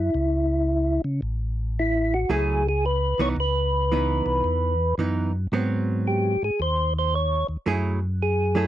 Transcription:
Already playing: F#2 E4
0.14 C#2
1.04 C#3
1.22 A1
1.79 E4
2.14 F#4
2.29 C#2 F#3 A3 E4 G#4
2.69 G#4
2.86 B4
3.18 C2 E3 B3 D#4 C#5
3.36 C#2 B4
3.92 E3 B3 D#4
4.26 C2
4.44 E2
4.98 F#2 E3 B3 D#4
5.52 G#2 F#3 B3 C4
6.07 G4
6.42 G#2 G#4
6.60 D#2 C5
6.99 C5
7.15 C#5
7.48 D#2
7.66 F#2 F#3 A3 E4 G#4
8.22 G#4
8.55 F#3 A3 E4 G#4 A4

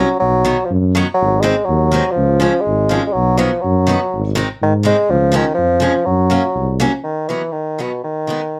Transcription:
Already playing: F#3
0.19 B1 F#3
0.45 D#3 F#3 B3
0.65 F3
0.71 F#2
0.95 D#3 F#3 B3
1.14 F#3
1.21 G#1
1.41 D#3 G#3 C4
1.65 D#2 F#3
1.92 D#3 G#3 C4
2.11 F3
2.17 C#2
2.40 F3 G#3 C#4
2.61 G#3
2.66 G#1
2.89 F3 G#3 C#4
3.07 G#3
3.13 B1 F#3
3.37 D#3 F3 F#3 B3
3.61 F#2 F#3
3.87 D#3 F#3 B3
4.14 G#1
4.35 D#3 G#3 C4
4.61 G#2 D#3
4.83 D#3 G#3 C4
5.10 C#2 F3
5.32 F3 G#3 C#4
5.36 D#3
5.54 F2 F3
5.80 F3 G#3 C#4
6.05 F#2 F#3
6.30 F#3 A#3 C#4
6.56 C2
6.80 F#3 A#3 C#4
7.04 D#3
7.28 D#3 E3 F#3 B3
7.52 D#3
7.78 B2 D#3 F#3 B3
8.04 D#3
8.27 D#3 G#3 B3

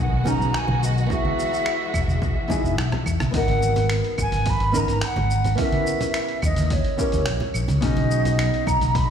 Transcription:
Already playing: D#3 G#3 B3 C#4 D#4 F#4 G#4
0.00 F#5
0.12 B1
0.24 B3 C#4 D#4 G#4 A#5, kick, high conga, low conga, shaker
0.40 B1, shaker
0.54 G#5, finger snap, shaker
0.68 B1, high conga, low conga
0.83 D#5, shaker
0.97 D#5, shaker
1.06 E3 G#3 B3 E4 E5, kick
1.11 F#4 G#4 E5, shaker
1.25 high conga
1.39 shaker
1.54 shaker
1.66 finger snap, claves, shaker
1.94 E1, kick, claves, shaker
2.08 E1, high conga, shaker
2.22 kick, shaker
2.48 B3 D#4 E4 F#4 G#4, kick, high conga, low conga, shaker
2.64 E1, shaker
2.77 B1, finger snap, cross-stick, shaker
2.92 cross-stick, low conga
3.06 E2, kick, claves, shaker
3.20 B1, cross-stick, high conga, shaker
3.31 G#1 B3 D#4, kick, open hi-hat, shaker
3.35 F#4 A#4 F#5
3.48 open hi-hat, high conga
3.62 shaker
3.76 open hi-hat, low conga, shaker
3.90 finger snap, open hi-hat, claves, shaker
4.04 open hi-hat
4.18 G#1 G#5, kick, claves, shaker
4.31 G#1, open hi-hat, high conga, shaker
4.46 B5, kick, open hi-hat, shaker
4.60 G#1, open hi-hat
4.72 B3 C#4 D#4 A#4, kick, high conga, shaker
4.77 A#5
4.88 G#1, open hi-hat, shaker
5.01 F#5, finger snap, open hi-hat, shaker
5.16 G#1, open hi-hat, high conga, low conga
5.30 shaker
5.45 open hi-hat, low conga, shaker
5.55 B3 C#4 E4, kick, open hi-hat, shaker
5.60 G4 A#4 E5
5.72 open hi-hat, high conga
5.87 shaker
6.01 open hi-hat, low conga, shaker
6.14 finger snap, open hi-hat, shaker
6.28 open hi-hat
6.42 D#2 D#5, kick, claves, shaker
6.56 D#2, open hi-hat, high conga, shaker
6.70 C#5, kick, open hi-hat, shaker
6.85 open hi-hat
6.97 B3 C#4 E4 G4 A#4, kick, shaker
7.12 D#2, open hi-hat, shaker
7.26 A#1, finger snap, open hi-hat, shaker
7.40 open hi-hat, low conga
7.54 A#1, claves, shaker
7.68 C#2, open hi-hat, high conga, low conga, shaker
7.81 B1 B3 C#4 D#4 F#4 D#5, kick, open hi-hat, shaker
7.86 G#4
7.97 open hi-hat, high conga
8.11 shaker
8.25 open hi-hat, low conga, shaker
8.39 finger snap, open hi-hat, claves, shaker
8.54 open hi-hat
8.66 B1 A#5, kick, claves, shaker
8.81 B1, open hi-hat, high conga, shaker
8.94 B5, kick, open hi-hat, shaker

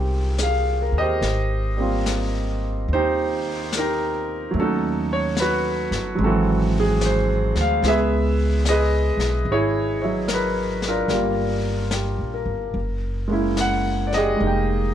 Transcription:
Already playing: C2 G#3 A#3 C4 D#4 F4
0.00 G4
0.38 G#4, snare, hi-hat pedal
0.43 F5
0.82 A#4
0.92 D#2
0.98 G4 C5 D#5
1.21 G#1, brush sweep, snare
1.77 G3 A#3 C4
1.82 F4
2.06 snare, hi-hat pedal
2.88 D#2, brush sweep
2.93 D#4 G4 C5
3.73 snare, hi-hat pedal
3.77 D#4 G4 A#4
4.51 D#2 F#3 A3, brush sweep
4.58 C#4 D#4 F#4 A4
5.13 C#5
5.37 B4, snare, hi-hat pedal
5.42 F#4
5.91 G1, snare
6.15 G#1 F#3 G#3, brush sweep
6.23 E3 C4 F#4 A4
6.80 G#4
7.01 snare, hi-hat pedal
7.05 C5
7.55 D2, snare
7.61 F5
7.82 C#2 G#3 B3 G#4, brush sweep, snare
7.88 G#4 B4 E5
8.65 D#5, snare, hi-hat pedal
8.70 G#4 B4
9.17 B1, snare
9.45 G#1, brush sweep
9.52 E4 G#4 C#5
10.02 F#3 C#5 E5
10.28 A#4, snare, hi-hat pedal
10.34 B4
10.82 snare
10.88 D4 F4 A#4
11.08 G1 G3 A#3 D4, brush sweep, snare
11.13 F4
11.91 G4, snare, hi-hat pedal
12.18 A#1
12.34 A#4
12.46 G1
12.73 F#1, brush sweep
13.28 G#3 A#3 C#4
13.33 E4
13.57 F#5, snare, hi-hat pedal
14.07 D5
14.13 G4 D#5, snare
14.17 G#4
14.36 G#3 A#3, brush sweep
14.41 F1 D#4
14.47 G5

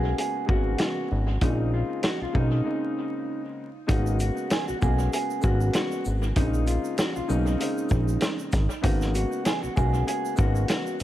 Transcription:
Already playing: B1 C#3 G#3 A#3 B3 F#4 G#4
0.18 G#4, closed hi-hat
0.46 G#1 C#3 G#3 A#3 B3 F#4, kick
0.78 F#4, snare, closed hi-hat
1.12 G#1
1.41 A#1 C#3 G#3 A#3 C4 D#4, kick, closed hi-hat
1.46 D#4
1.74 F4
2.03 F#4, snare, closed hi-hat
2.22 B1 F4
2.33 B1 C#3 G#3 A#3 C4 D#4, kick
2.64 C#3 G#3 A#3 C4 D#4
3.87 G#1 C#3 G#3 A#3 B3 D#4 F#4, kick, closed hi-hat, shaker
4.06 shaker
4.20 F#4, closed hi-hat, shaker
4.37 shaker
4.50 G#4, snare, closed hi-hat, shaker
4.68 B1 F#4, shaker
4.81 B1 C#3 G#3 A#3 B3 F#4 G#4, kick, shaker
4.99 shaker
5.13 G#4, closed hi-hat, shaker
5.30 shaker
5.41 G#1 C#3 G#3 A#3 B3 F#4, kick, shaker
5.61 shaker
5.73 F#4, snare, closed hi-hat, shaker
5.91 shaker
6.05 G#1, shaker
6.23 shaker
6.36 A#1 C#3 G#3 A#3 C4 D#4, kick, closed hi-hat, shaker
6.40 D#4
6.54 shaker
6.67 F4, closed hi-hat, shaker
6.85 shaker
6.98 F#4, snare, closed hi-hat, shaker
7.16 B1 F4, shaker
7.28 B1 C#3 G#3 A#3 C4 D#4, shaker
7.47 shaker
7.58 C#3 G#3 A#3 C4 D#4, closed hi-hat, shaker
7.78 shaker
7.89 kick, shaker
7.91 A#1, shaker
8.08 shaker
8.21 snare, closed hi-hat, shaker
8.39 shaker
8.52 G#1, kick, snare, closed hi-hat, shaker
8.70 shaker
8.81 G#1 C#3 G#3 A#3 B3 D#4 F#4, kick, closed hi-hat, shaker
9.01 snare, shaker
9.14 F#4, closed hi-hat, shaker
9.32 shaker
9.45 G#4, snare, closed hi-hat, shaker
9.63 B1 F#4, shaker
9.75 B1 C#3 G#3 A#3 B3 F#4 G#4, kick, shaker
9.94 shaker
10.07 G#4, closed hi-hat, shaker
10.25 shaker
10.36 C#3 G#3 A#3 B3 F#4, shaker
10.38 G#1 F#4, kick, shaker
10.56 shaker
10.68 F#4, snare, closed hi-hat, shaker
10.87 shaker
11.00 closed hi-hat, shaker

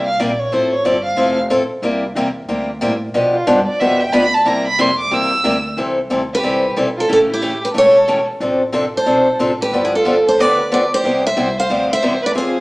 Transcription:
Already playing: C2
0.06 F5
0.20 A#1 C3 G3 A#3 E4 G4 D5
0.39 C#5
0.52 A1 F3 C4 E4 A4 C5
0.73 C#5
0.85 G1 F3 C4 E4 A4 D5
1.05 F5
1.17 F1 F3 C4 E4 A4
1.50 A1 F3 C4 E4 A4
1.70 muted upright bass stroke
1.82 C2 C3 G3 A#3 E4 G4
2.15 E2 C3 G3 A#3 E4 G4
2.48 D2 C3 G3 A#3 E4 G4
2.81 A2 C3 G3 A#3 E4 G4
3.14 B2 F3 B3 D4 G4 B4
3.34 F4
3.47 G2 B2 F3 B3 D4 G4 A4 B4
3.67 D5, muted upright bass stroke
3.80 F2 B2 F3 B3 D4 G4 B4 E5
4.00 G5
4.12 D2 B2 F3 B3 D4 G4 B4 B5
4.34 A5
4.45 C2 C3 G3 A#3 E4 G4 A#5
4.67 B5
4.78 F2 C3 G3 A#3 E4 G4 C6
4.99 D6
5.11 E2 C3 G3 A#3 E4 G4 E6
5.44 D2 C3 G3 A#3 E4 G4
5.77 C2 C3 E3 G3 C4 E4 A4
6.10 D2 C3 E3 G3 C4 E4 A4
6.33 G4 B4
6.43 C2 C3 E3 G3 C4 E4 A4
6.76 B1 C3 E3 G3 C4 E4 A4
6.97 F4 A4
7.08 A1 C#3 E3 A3 C#4 E4 G4
7.13 A4
7.29 E4
7.34 G4
7.42 C#3 E3 A3 C#4 G4
7.61 G4 B4
7.72 E1 C#3 E3 A3 C#4 G4 A4
7.78 C#5
8.08 C#3 E3 A3 C#4 G4
8.40 A1 C3 F3 C4 D4 A4
8.72 C3 F3 C4 D4 A4
8.96 A4 C5
9.06 B1 C3 F3 C4 D4 A4
9.39 A1 C3 F3 C4 D4 A4
9.61 G4 B4
9.72 G1 D3 F3 B3 D4 G4
9.84 E4 G#4
9.94 F4 A4
10.05 D3 F3 B3 D4 G4
10.26 A4 C5
10.38 D2 D3 F3 B3 D4 G4 B4 D5
10.72 D3 F3 B3 D4 G4 B4 D5
10.93 G4 C5
11.04 C2 C3 G3 B3 E4 G4
11.24 C5 E5
11.37 C2 C3 G3 B3 E4 G4
11.57 C5 F5
11.70 D2 C3 G3 B3 E4 G4
11.90 C5 E5
12.02 E2 C3 G3 B3 E4 G4
12.22 B4
12.26 D5
12.35 F2 F3 C4 F4 G#4 C5

